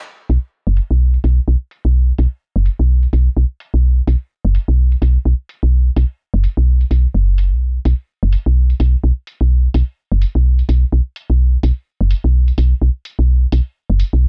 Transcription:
0.30 0.38 B1 medium
0.30 open hi-hat medium
0.67 0.80 F#1 loud
0.77 open hi-hat medium
0.91 1.18 B1 medium
1.14 open hi-hat soft
1.24 1.40 B1 medium
1.24 open hi-hat medium
1.48 1.56 B1 medium
1.71 open hi-hat medium
1.85 2.12 B1 medium
2.18 2.27 B1 medium
2.18 open hi-hat medium
2.56 2.69 F#1 loud
2.66 open hi-hat medium
2.79 3.07 B1 medium
3.03 open hi-hat soft
3.13 3.29 B1 medium
3.13 open hi-hat medium
3.37 3.45 B1 medium
3.60 open hi-hat medium
3.74 4.01 B1 medium
4.07 4.16 B1 medium
4.07 open hi-hat medium
4.45 4.58 F#1 loud
4.55 open hi-hat medium
4.68 4.96 B1 medium
4.92 open hi-hat soft
5.02 5.18 B1 medium
5.02 open hi-hat medium
5.25 5.34 B1 medium
5.49 open hi-hat medium
5.63 5.90 B1 medium
5.96 6.05 B1 medium
5.96 open hi-hat medium
6.34 6.47 F#1 loud
6.44 open hi-hat medium
6.57 6.85 B1 medium
6.81 open hi-hat soft
6.91 7.07 B1 medium
6.91 open hi-hat medium
7.15 7.53 F#1 medium
7.38 open hi-hat medium
7.52 7.79 B1 medium
7.85 7.94 B1 medium
7.85 open hi-hat medium
8.23 8.36 F#1 loud
8.33 open hi-hat medium
8.46 8.74 B1 medium
8.70 open hi-hat soft
8.80 8.96 B1 medium
8.80 open hi-hat medium
9.04 9.12 B1 medium
9.27 open hi-hat medium
9.41 9.68 B1 medium
9.74 9.83 B1 loud
9.74 open hi-hat medium
10.12 10.25 F#1 loud
10.22 open hi-hat medium
10.35 10.63 B1 medium
10.59 open hi-hat soft
10.69 10.85 B1 medium
10.69 open hi-hat medium
10.92 11.01 B1 medium
11.16 open hi-hat medium
11.30 11.57 B1 medium
11.63 11.72 B1 loud
11.63 open hi-hat medium
12.01 12.14 F#1 loud
12.11 open hi-hat medium
12.24 12.52 B1 medium
12.48 open hi-hat soft
12.58 12.74 B1 medium
12.58 open hi-hat medium
12.82 12.90 B1 medium
13.05 open hi-hat medium
13.19 13.46 B1 medium
13.52 13.61 B1 medium
13.52 open hi-hat medium
13.90 14.03 F#1 loud
14.00 open hi-hat medium
14.13 14.28 B1 medium

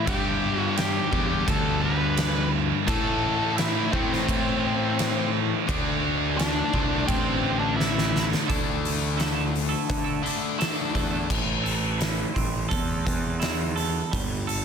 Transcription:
0.06 1.09 G2 medium
0.06 1.00 G2 loud
0.06 1.10 D3 loud
0.06 1.10 G3 loud
0.06 0.74 G4 medium
0.06 0.58 G5 loud
0.06 kick loud
0.06 crash medium
0.58 0.76 F#5 loud
0.77 1.45 G4 medium
0.77 1.48 G5 medium
0.77 snare loud
0.77 crash medium
1.11 1.43 E2 loud
1.11 2.86 G2 medium
1.11 2.85 D3 medium
1.11 2.85 G3 medium
1.11 kick medium
1.48 2.71 D2 medium
1.48 1.81 A4 medium
1.48 1.84 A5 medium
1.48 kick loud
1.48 crash medium
1.82 2.49 B4 medium
1.82 2.48 B5 medium
2.17 snare loud
2.17 crash medium
2.87 3.90 A2 loud
2.87 3.80 A2 loud
2.87 3.93 E3 loud
2.87 3.92 A3 loud
2.87 3.54 A4 medium
2.87 3.53 A5 loud
2.87 kick loud
2.87 crash medium
3.56 3.90 E4 medium
3.56 3.89 E5 loud
3.56 snare loud
3.56 crash medium
3.92 4.24 A2 medium
3.92 5.67 A2 medium
3.92 5.69 E3 medium
3.92 5.69 A3 medium
3.92 5.28 C4 medium
3.92 5.28 C5 medium
3.92 kick medium
4.13 snare soft
4.28 5.52 A2 medium
4.28 kick loud
4.28 crash medium
4.99 snare loud
4.99 crash medium
5.67 6.61 D2 loud
5.67 6.70 D3 medium
5.67 6.71 A3 loud
5.67 6.72 D4 loud
5.67 kick loud
5.67 crash medium
6.37 7.04 D4 medium
6.37 7.07 D5 medium
6.37 snare loud
6.37 crash medium
6.73 7.05 C2 loud
6.73 8.48 D3 medium
6.73 8.47 A3 medium
6.73 8.46 D4 medium
6.73 kick medium
7.07 8.33 A1 medium
7.07 7.57 C4 medium
7.07 7.59 C5 medium
7.07 kick loud
7.07 crash medium
7.59 7.77 D4 medium
7.59 7.76 D5 medium
7.76 8.26 E4 medium
7.76 8.26 E5 medium
7.80 snare medium
7.98 snare medium
8.16 snare medium
8.34 snare medium
8.47 9.74 D2 medium
8.47 9.15 D3 medium
8.47 10.23 D3 medium
8.47 9.16 A3 medium
8.47 9.17 E4 medium
8.47 9.18 A4 medium
8.47 kick loud
8.47 open hi-hat medium
8.51 10.23 A3 medium
8.51 10.22 D4 medium
8.85 open hi-hat medium
9.17 9.51 D3 medium
9.17 9.35 A3 medium
9.17 9.34 E4 loud
9.17 9.33 A4 medium
9.17 open hi-hat medium
9.21 snare loud
9.34 9.51 A3 medium
9.34 9.52 E4 medium
9.34 9.52 A4 medium
9.52 muted clean electric guitar stroke soft
9.52 open hi-hat soft
9.69 10.05 A3 medium
9.69 10.04 E4 medium
9.69 10.03 A4 medium
9.90 10.21 D3 loud
9.90 kick medium
9.90 open hi-hat medium
10.04 10.21 A3 medium
10.04 10.22 E4 medium
10.04 10.22 A4 medium
10.22 10.57 D3 medium
10.22 10.57 A3 medium
10.22 10.57 D4 medium
10.22 10.57 E4 medium
10.22 10.58 A4 medium
10.22 open hi-hat soft
10.58 11.27 D3 medium
10.58 10.92 D3 medium
10.58 10.76 A3 medium
10.58 11.28 A3 medium
10.58 11.28 D4 medium
10.58 10.75 E4 medium
10.58 10.74 A4 medium
10.58 snare loud
10.58 open hi-hat medium
10.75 10.92 A3 medium
10.75 10.93 E4 medium
10.75 10.94 A4 medium
10.93 11.26 E2 medium
10.93 11.27 D3 medium
10.93 11.11 A3 medium
10.93 11.10 E4 medium
10.93 11.09 A4 medium
10.93 kick medium
10.93 open hi-hat soft
11.11 11.28 A3 medium
11.11 11.28 E4 medium
11.11 11.27 A4 medium
11.29 12.23 A1 medium
11.29 13.06 A2 medium
11.29 kick loud
11.29 crash medium
11.63 12.68 A4 medium
11.63 open hi-hat soft
11.98 13.38 E4 medium
11.98 snare loud
11.98 open hi-hat medium
12.34 12.67 A1 medium
12.34 13.04 C4 medium
12.34 kick medium
12.34 open hi-hat medium
12.69 13.03 E2 medium
12.69 13.75 A4 medium
12.69 kick loud
12.69 open hi-hat medium
13.05 14.00 E2 medium
13.05 14.12 C4 medium
13.05 kick medium
13.05 open hi-hat soft
13.40 14.11 E4 medium
13.40 snare loud
13.40 open hi-hat medium
13.76 14.15 A4 medium
13.76 open hi-hat soft
14.12 14.65 G1 medium
14.12 14.65 G3 medium
14.12 kick loud
14.12 open hi-hat medium
14.47 14.65 A4 medium
14.47 open hi-hat soft

